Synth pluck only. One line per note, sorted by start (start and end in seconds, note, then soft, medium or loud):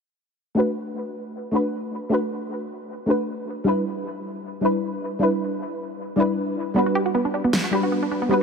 0.55 1.50 A3 medium
0.55 1.51 D4 medium
0.55 1.52 F#4 medium
0.59 1.52 B4 loud
1.51 2.08 A3 medium
1.51 2.09 D4 medium
1.51 2.10 F#4 medium
1.55 2.10 B4 medium
2.09 3.05 A3 medium
2.09 3.06 D4 medium
2.09 3.06 F#4 medium
2.13 3.07 B4 loud
3.06 3.63 A3 medium
3.06 3.64 D4 medium
3.06 3.65 F#4 medium
3.10 3.65 B4 medium
3.64 4.60 G3 loud
3.64 4.61 D4 medium
3.64 4.61 E4 medium
3.68 4.62 B4 loud
4.61 5.18 G3 medium
4.61 5.19 D4 medium
4.61 5.19 E4 medium
4.61 5.20 B4 medium
5.19 6.15 G3 medium
5.19 6.15 D4 medium
5.19 6.16 E4 medium
5.23 6.17 B4 loud
6.16 6.73 G3 medium
6.16 6.74 D4 medium
6.16 6.74 E4 medium
6.20 6.75 B4 loud
6.74 7.70 G3 medium
6.74 7.70 D4 medium
6.74 7.71 F#4 medium
6.78 7.72 B4 loud
7.71 8.27 G3 medium
7.71 8.28 D4 medium
7.71 8.29 F#4 medium
7.71 8.30 B4 medium
8.29 8.43 G3 medium
8.29 8.43 D4 medium
8.29 8.43 F#4 medium
8.29 8.43 B4 loud